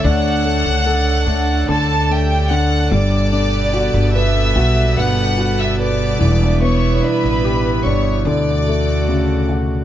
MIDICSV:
0, 0, Header, 1, 5, 480
1, 0, Start_track
1, 0, Key_signature, 2, "major"
1, 0, Tempo, 821918
1, 22, Time_signature, 4, 2, 24, 8
1, 5748, End_track
2, 0, Start_track
2, 0, Title_t, "Violin section"
2, 0, Program_c, 0, 48
2, 36, Note_on_c, 0, 90, 102
2, 38, Note_on_c, 0, 78, 123
2, 966, Note_off_c, 0, 78, 0
2, 966, Note_off_c, 0, 90, 0
2, 992, Note_on_c, 0, 69, 91
2, 993, Note_on_c, 0, 81, 122
2, 1227, Note_off_c, 0, 69, 0
2, 1227, Note_off_c, 0, 81, 0
2, 1233, Note_on_c, 0, 67, 90
2, 1235, Note_on_c, 0, 79, 117
2, 1465, Note_on_c, 0, 90, 92
2, 1467, Note_off_c, 0, 67, 0
2, 1467, Note_on_c, 0, 78, 108
2, 1468, Note_off_c, 0, 79, 0
2, 1703, Note_off_c, 0, 90, 0
2, 1704, Note_off_c, 0, 78, 0
2, 1707, Note_on_c, 0, 74, 115
2, 1708, Note_on_c, 0, 86, 88
2, 2401, Note_off_c, 0, 74, 0
2, 2401, Note_off_c, 0, 86, 0
2, 2432, Note_on_c, 0, 88, 92
2, 2434, Note_on_c, 0, 76, 118
2, 2906, Note_on_c, 0, 90, 96
2, 2907, Note_off_c, 0, 88, 0
2, 2908, Note_off_c, 0, 76, 0
2, 2912, Note_on_c, 0, 78, 113
2, 3264, Note_off_c, 0, 90, 0
2, 3267, Note_off_c, 0, 78, 0
2, 3275, Note_on_c, 0, 88, 82
2, 3276, Note_on_c, 0, 76, 94
2, 3388, Note_off_c, 0, 88, 0
2, 3389, Note_off_c, 0, 76, 0
2, 3395, Note_on_c, 0, 86, 85
2, 3398, Note_on_c, 0, 74, 102
2, 3845, Note_off_c, 0, 86, 0
2, 3846, Note_off_c, 0, 74, 0
2, 3870, Note_on_c, 0, 85, 84
2, 3873, Note_on_c, 0, 73, 97
2, 4106, Note_off_c, 0, 85, 0
2, 4107, Note_off_c, 0, 73, 0
2, 4111, Note_on_c, 0, 83, 84
2, 4116, Note_on_c, 0, 71, 107
2, 4585, Note_on_c, 0, 85, 68
2, 4586, Note_off_c, 0, 83, 0
2, 4588, Note_on_c, 0, 73, 91
2, 4589, Note_off_c, 0, 71, 0
2, 4823, Note_off_c, 0, 85, 0
2, 4825, Note_off_c, 0, 73, 0
2, 4831, Note_on_c, 0, 86, 76
2, 4832, Note_on_c, 0, 74, 93
2, 5523, Note_off_c, 0, 74, 0
2, 5523, Note_off_c, 0, 86, 0
2, 5748, End_track
3, 0, Start_track
3, 0, Title_t, "Analog synth pad"
3, 0, Program_c, 1, 89
3, 0, Note_on_c, 1, 57, 63
3, 0, Note_on_c, 1, 62, 73
3, 0, Note_on_c, 1, 69, 82
3, 0, Note_on_c, 1, 73, 74
3, 1679, Note_off_c, 1, 57, 0
3, 1679, Note_off_c, 1, 62, 0
3, 1679, Note_off_c, 1, 73, 0
3, 1702, Note_on_c, 1, 55, 73
3, 1704, Note_on_c, 1, 59, 81
3, 1706, Note_on_c, 1, 47, 86
3, 3602, Note_off_c, 1, 69, 0
3, 3603, Note_off_c, 1, 59, 0
3, 3633, Note_on_c, 1, 59, 70
3, 3633, Note_on_c, 1, 64, 89
3, 4798, Note_off_c, 1, 55, 0
3, 4815, Note_off_c, 1, 59, 0
3, 4815, Note_off_c, 1, 64, 0
3, 4816, Note_on_c, 1, 66, 80
3, 4817, Note_on_c, 1, 57, 75
3, 5748, Note_off_c, 1, 47, 0
3, 5748, Note_off_c, 1, 57, 0
3, 5748, Note_off_c, 1, 66, 0
3, 5748, End_track
4, 0, Start_track
4, 0, Title_t, "Upright piano"
4, 0, Program_c, 2, 0
4, 0, Control_c, 2, 64, 127
4, 0, Note_on_c, 2, 50, 54
4, 0, Note_on_c, 2, 57, 54
4, 26, Note_on_c, 2, 62, 83
4, 257, Note_off_c, 2, 57, 0
4, 266, Note_on_c, 2, 57, 52
4, 479, Note_off_c, 2, 50, 0
4, 502, Note_on_c, 2, 69, 59
4, 735, Note_off_c, 2, 57, 0
4, 744, Note_on_c, 2, 57, 62
4, 984, Note_on_c, 2, 50, 62
4, 1219, Note_off_c, 2, 57, 0
4, 1228, Note_on_c, 2, 57, 59
4, 1439, Note_off_c, 2, 69, 0
4, 1454, Note_off_c, 2, 50, 0
4, 1463, Note_on_c, 2, 50, 62
4, 1680, Note_off_c, 2, 62, 0
4, 1690, Note_off_c, 2, 57, 0
4, 1695, Note_off_c, 2, 50, 0
4, 1702, Note_on_c, 2, 55, 72
4, 1709, Control_c, 2, 64, 0
4, 1802, Control_c, 2, 64, 127
4, 1942, Note_on_c, 2, 62, 63
4, 2182, Note_on_c, 2, 66, 56
4, 2424, Note_on_c, 2, 71, 64
4, 2654, Note_off_c, 2, 66, 0
4, 2663, Note_on_c, 2, 66, 60
4, 2879, Note_off_c, 2, 62, 0
4, 2895, Note_off_c, 2, 71, 0
4, 2904, Note_on_c, 2, 71, 58
4, 3133, Note_off_c, 2, 66, 0
4, 3142, Note_on_c, 2, 66, 58
4, 3375, Note_off_c, 2, 71, 0
4, 3383, Note_on_c, 2, 71, 56
4, 3598, Note_off_c, 2, 55, 0
4, 3607, Note_off_c, 2, 66, 0
4, 3615, Note_off_c, 2, 71, 0
4, 3616, Note_on_c, 2, 52, 71
4, 3628, Control_c, 2, 64, 0
4, 3731, Control_c, 2, 64, 127
4, 3862, Note_on_c, 2, 59, 69
4, 4103, Note_on_c, 2, 62, 54
4, 4346, Note_on_c, 2, 67, 62
4, 4576, Note_off_c, 2, 62, 0
4, 4584, Note_on_c, 2, 62, 59
4, 4795, Note_off_c, 2, 52, 0
4, 4798, Note_off_c, 2, 59, 0
4, 4809, Note_off_c, 2, 67, 0
4, 4816, Note_off_c, 2, 62, 0
4, 4826, Note_on_c, 2, 50, 69
4, 4829, Control_c, 2, 64, 0
4, 4938, Control_c, 2, 64, 127
4, 5070, Note_on_c, 2, 57, 62
4, 5306, Note_on_c, 2, 49, 55
4, 5541, Note_on_c, 2, 66, 52
4, 5748, Note_off_c, 2, 49, 0
4, 5748, Note_off_c, 2, 50, 0
4, 5748, Note_off_c, 2, 57, 0
4, 5748, Note_off_c, 2, 66, 0
4, 5748, End_track
5, 0, Start_track
5, 0, Title_t, "Upright bass"
5, 0, Program_c, 3, 32
5, 26, Note_on_c, 3, 38, 117
5, 360, Note_off_c, 3, 38, 0
5, 382, Note_on_c, 3, 37, 81
5, 718, Note_off_c, 3, 37, 0
5, 741, Note_on_c, 3, 38, 103
5, 964, Note_off_c, 3, 38, 0
5, 983, Note_on_c, 3, 38, 104
5, 1679, Note_off_c, 3, 38, 0
5, 1701, Note_on_c, 3, 31, 105
5, 2278, Note_off_c, 3, 31, 0
5, 2301, Note_on_c, 3, 31, 98
5, 2638, Note_off_c, 3, 31, 0
5, 2662, Note_on_c, 3, 35, 99
5, 2885, Note_off_c, 3, 35, 0
5, 2904, Note_on_c, 3, 31, 99
5, 3599, Note_off_c, 3, 31, 0
5, 3625, Note_on_c, 3, 28, 102
5, 4080, Note_off_c, 3, 28, 0
5, 4225, Note_on_c, 3, 33, 98
5, 4560, Note_off_c, 3, 33, 0
5, 4583, Note_on_c, 3, 31, 95
5, 4805, Note_off_c, 3, 31, 0
5, 4819, Note_on_c, 3, 38, 102
5, 5748, Note_off_c, 3, 38, 0
5, 5748, End_track
0, 0, End_of_file